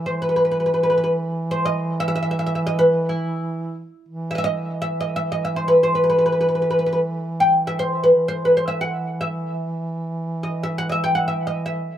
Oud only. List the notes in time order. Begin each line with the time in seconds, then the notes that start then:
0.06 C5
0.22 B4
0.29 B4
0.36 B4
0.45 B4
0.51 B4
0.60 B4
0.66 B4
0.74 B4
0.83 B4
0.90 B4
0.97 B4
1.04 B4
1.51 C5
1.65 D#5
2.00 E5
2.08 E5
2.16 E5
2.23 E5
2.31 E5
2.39 E5
2.46 E5
2.55 E5
2.67 D#5
2.79 B4
3.09 E4
4.31 E5
4.35 D#5 E5
4.44 D#5
4.82 E5
5.01 D#5
5.16 E5
5.32 D#5
5.45 E5
5.56 C5
5.68 B4
5.83 C5
5.95 B4
6.04 B4
6.10 B4
6.18 B4
6.26 B4
6.32 B4
6.41 B4
6.49 B4
6.55 B4
6.62 B4
6.71 B4
6.79 B4
6.86 B4
6.93 B4
7.40 G5
7.67 E5
7.79 C5
8.04 B4
8.28 C5
8.45 B4
8.57 C5
8.68 E5
8.81 F#5
9.21 E5
10.43 D#5
10.63 E5
10.78 F#5
10.89 D#5 E5
11.04 G5
11.15 F#5
11.28 E5
11.47 D#5
11.66 E5